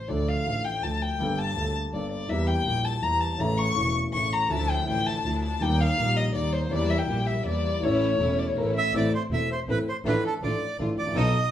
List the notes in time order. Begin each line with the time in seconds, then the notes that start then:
0.07 D2 D3 F3 A3 D4 D5
0.11 A4
0.28 F5
0.45 A1 A2 F3 A3 D4
0.49 A4
0.64 G5
0.82 D2 D3 F3 A3 D4 A4 A5
1.02 G5
1.19 G1 G2 G3 A#3 D4
1.23 A4
1.39 A5
1.55 D2 D3 G3 A#3 D4 A4
1.92 G1 G2 G3 A#3 D4 A4 D5
2.11 D5
2.28 E2 E3 G3 A#3 G4 E5
2.47 G5
2.65 A#1 A#2 E3 G3 A#3
2.69 G4
2.85 A5
3.01 E2 E3 G3 A#3 A#5
3.06 G4
3.21 A5
3.37 A1 A2 C#3 E3 A3 E4 A#5
3.58 C#6
3.74 E1 E2 C#3 E3 A3 E4
4.11 A1 A2 C#3 E3 A3 E4 C#6
4.32 A#5
4.49 D2 D3 F3 A3 D4 E4 A5
4.70 G5
4.85 A1 A2 D3 F3 A3 D4 E4 G5
5.07 A5
5.23 D2 D3 F3 A3 D4 E4
5.27 E4
5.44 A5
5.61 D#2 D#3 G3 A#3 D#4 G4 G5
5.80 F5
5.96 A#1 A#2 D#3 G3 A#3 D#4 G4
6.17 D#5
6.32 D#2 D#3 G3 A#3 D#4 D5
6.37 G4
6.53 C5
6.70 E2 E3 G3 A#3 E4 G4 D5
6.90 E5
6.98 G5
7.06 A#1 A#2 E3 G3 A#3 E4 G4
7.27 E5
7.44 E2 E3 G3 A#3 E4 G4 D5
7.80 A1 A2 E3 A3 C#4 E4 C#5
7.84 A4
8.17 E1 E2 E3 A3 C#4 E4
8.21 A4
8.38 D5
8.47 C#5
8.55 A1 A2 E3 A3 C#4 E4 A4 A#4
8.66 C#5
8.76 E5
8.93 A1 A2 E3 A3 C4 E4 A4 D5
9.14 C5
9.30 E1 E2 E3 A3 C4 E4 A4 E5
9.51 C5
9.68 A1 A2 E3 A3 C4 E4 A4 B4
9.88 C5
10.05 A1 A2 F3 A3 D4 F4 A4 B4
10.25 A4
10.42 A1 A2 F3 A3 D4 F4 A4 D5
10.79 A1 A2 F3 A3 D4 F4 A4
10.98 A1 D5
11.02 G#1
11.07 A1
11.11 A#1
11.15 B1 B2 F#3 B3 D#4 A4 D#5